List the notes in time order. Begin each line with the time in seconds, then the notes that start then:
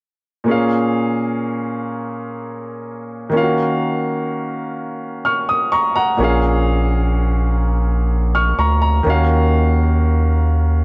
0.44 A#2 A#3 C#4
0.49 G#4 F5
3.30 D#3 A#3 C#4
3.35 F4 F5
3.41 F#4
5.25 C#6 F6
5.49 D#6
5.72 A#5 C#6
5.96 F#5 A#5
6.17 A#1 A#2 A#3 C#4
6.23 G#4 F5
8.35 C#6 F6
8.59 D2 A#5 C#6
8.82 A#5
9.03 D#2 D#3 A#3 C#4
9.08 F#4 F5